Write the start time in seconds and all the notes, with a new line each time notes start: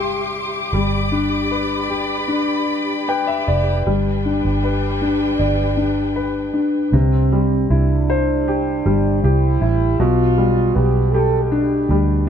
Already playing: G1 C3 G3 E4 G4 E5 C6 D6
0.72 G1 G3 D5 B5
1.12 D4
1.51 B4
1.90 G4
2.28 D4
3.08 B4 G5
3.27 E5
3.47 F1 D5
3.86 G1 G3 D4 B4 G5
4.25 D4
4.45 G1
4.64 B4
5.02 D4
5.39 G1 D5
5.77 D4
6.16 B4
6.54 D4
6.92 C2 C3 C4
7.32 G3
7.70 C2 D4 E4
8.10 C5
8.48 G4
8.86 G1 G3
9.23 C2 E4 G4
9.61 A1 E4
9.99 B1 B2 F4
10.38 G3
10.75 B1 B3 G4
11.12 G4 A4
11.44 A4
11.50 D4 G4
11.89 D2 G3